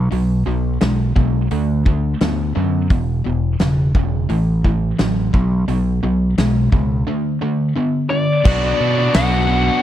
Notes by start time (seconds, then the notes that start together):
0.11 B1 B2 F#3, open hi-hat
0.47 B1 B2 F#3
0.81 B1 B2 G#3, snare, open hi-hat
1.16 B1 B2 G#3, kick
1.51 D2 D3 A3, open hi-hat
1.85 D3 A3, kick
2.21 D2 D3 B3, snare, open hi-hat
2.55 F#2 D3 B3
2.90 E1 E2 B2, kick, open hi-hat
3.24 E1 E2 B2
3.59 E1 E2 C#3, snare, open hi-hat
3.95 E1 E2 C#3, kick
4.29 A1 A2 E3, open hi-hat
4.64 A2 E3, kick
4.98 A1 A2 F#3, snare, open hi-hat
5.33 B1 B2 F#3, kick
5.68 B1 B2 F#3, open hi-hat
6.03 B1 B2 F#3
6.38 B1 B2 G#3, snare, open hi-hat
6.72 C#2 B2 G#3, kick
7.07 D3 A3
7.41 D3 A3
7.76 D3 B3
8.10 D3 B3 D5
8.44 B1 B2 F#3 B3 D4 F#4, kick, crash
8.79 B2 F#3 B3 D4 F#4
8.96 B3 D4 F#4
9.13 B1 B2 F#3 B3 D4 F#4 F#5, snare, open hi-hat
9.48 F#3 B3 D4 F#4
9.65 B3 D4 F#4